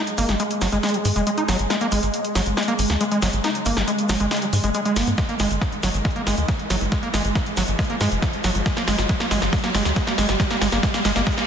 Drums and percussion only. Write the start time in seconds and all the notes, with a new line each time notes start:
0.07 closed hi-hat
0.18 open hi-hat, shaker
0.28 snare, closed hi-hat, shaker
0.39 closed hi-hat, shaker
0.51 closed hi-hat
0.61 snare, open hi-hat, shaker
0.72 closed hi-hat, shaker
0.83 snare, open hi-hat, shaker
0.89 closed hi-hat
0.94 closed hi-hat
1.05 open hi-hat, shaker
1.16 closed hi-hat, shaker
1.27 closed hi-hat, shaker
1.38 closed hi-hat
1.48 snare, open hi-hat, shaker
1.59 closed hi-hat, shaker
1.70 snare, closed hi-hat, shaker
1.81 closed hi-hat
1.92 open hi-hat, shaker
2.02 closed hi-hat, shaker
2.13 closed hi-hat, shaker
2.25 closed hi-hat
2.35 snare, open hi-hat, shaker
2.45 closed hi-hat, shaker
2.57 snare, closed hi-hat, shaker
2.63 closed hi-hat
2.68 closed hi-hat
2.79 open hi-hat, shaker
2.90 snare, closed hi-hat, shaker
3.01 closed hi-hat, shaker
3.12 closed hi-hat
3.22 snare, open hi-hat, shaker
3.33 closed hi-hat, shaker
3.44 snare, closed hi-hat, shaker
3.55 closed hi-hat
3.66 open hi-hat, shaker
3.77 snare, closed hi-hat, shaker
3.87 closed hi-hat, shaker
3.98 closed hi-hat
4.09 snare, open hi-hat, shaker
4.20 closed hi-hat, shaker
4.31 snare, open hi-hat, shaker
4.37 closed hi-hat
4.42 closed hi-hat
4.53 open hi-hat, shaker
4.64 closed hi-hat, shaker
4.74 closed hi-hat, shaker
4.85 closed hi-hat
4.96 snare, open hi-hat, shaker
5.07 closed hi-hat, shaker
5.17 kick, snare, closed hi-hat, shaker
5.29 closed hi-hat
5.39 snare, open hi-hat, shaker
5.51 closed hi-hat, shaker
5.62 kick, snare, closed hi-hat, shaker
5.72 closed hi-hat
5.83 snare, open hi-hat, shaker
5.94 closed hi-hat, shaker
6.05 kick, snare, closed hi-hat, shaker
6.10 closed hi-hat
6.16 closed hi-hat
6.27 snare, open hi-hat, shaker
6.37 closed hi-hat, shaker
6.48 kick, snare, closed hi-hat, shaker
6.59 closed hi-hat
6.70 snare, open hi-hat, shaker
6.81 closed hi-hat, shaker
6.92 kick, snare, closed hi-hat, shaker
7.03 closed hi-hat
7.14 snare, open hi-hat, shaker
7.25 closed hi-hat, shaker
7.35 kick, snare, closed hi-hat, shaker
7.46 closed hi-hat
7.57 snare, open hi-hat, shaker
7.68 closed hi-hat, shaker
7.79 kick, snare, open hi-hat, shaker
7.84 closed hi-hat
7.90 closed hi-hat
8.01 snare, open hi-hat, shaker
8.11 closed hi-hat, shaker
8.22 kick, snare, closed hi-hat, shaker
8.33 closed hi-hat
8.44 snare, open hi-hat, shaker
8.55 closed hi-hat, shaker
8.66 kick, snare, closed hi-hat, shaker
8.77 snare, closed hi-hat
8.88 snare, open hi-hat, shaker
8.98 snare, closed hi-hat, shaker
9.09 kick, snare, closed hi-hat, shaker
9.20 snare, closed hi-hat
9.31 snare, open hi-hat, shaker
9.42 snare, closed hi-hat, shaker
9.53 kick, snare, closed hi-hat, shaker
9.58 closed hi-hat
9.64 snare, closed hi-hat
9.75 snare, open hi-hat, shaker
9.85 snare, closed hi-hat, shaker
9.96 kick, snare, closed hi-hat, shaker
10.07 snare, closed hi-hat
10.18 snare, open hi-hat, shaker
10.29 snare, closed hi-hat, shaker
10.40 kick, snare, closed hi-hat, shaker
10.51 snare, closed hi-hat
10.62 snare, open hi-hat, shaker
10.72 snare, closed hi-hat, shaker
10.83 kick, snare, closed hi-hat, shaker
10.94 snare, closed hi-hat
11.05 snare, open hi-hat, shaker
11.16 snare, closed hi-hat, shaker
11.26 kick, snare, open hi-hat, shaker
11.32 closed hi-hat
11.38 snare, closed hi-hat